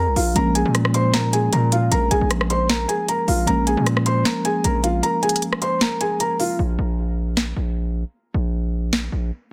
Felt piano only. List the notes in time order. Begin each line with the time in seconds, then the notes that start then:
Already playing: A#4 A#5
0.16 F4 F5
0.36 A#4 A#5
0.55 G#4 G#5
0.94 C5 C6
1.14 A#4 A#5
1.33 G#4 G#5
1.53 A#4 A#5
1.72 F4 F5
1.91 A#4 A#5
2.11 G#4 G#5
2.50 C5 C6
2.69 A#4 A#5
2.88 G#4 G#5
3.09 A#4 A#5
3.28 F4 F5
3.47 A#4 A#5
3.67 G#4 G#5
4.06 C5 C6
4.25 A#4 A#5
4.45 G#4 G#5
4.64 A#4 A#5
4.84 F4 F5
5.03 A#4 A#5
5.23 G#4 G#5
5.62 C5 C6
5.81 A#4 A#5
6.01 G#4 G#5
6.20 A#4 A#5
6.40 F4 F5